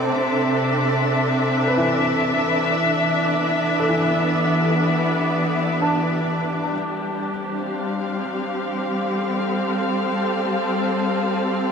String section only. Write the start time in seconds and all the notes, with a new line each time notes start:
Already playing: C3 C4 D4 A4
0.11 E5
2.41 E3
3.22 B3
4.32 G4
6.72 G3
7.35 C4
7.56 F5
9.04 A4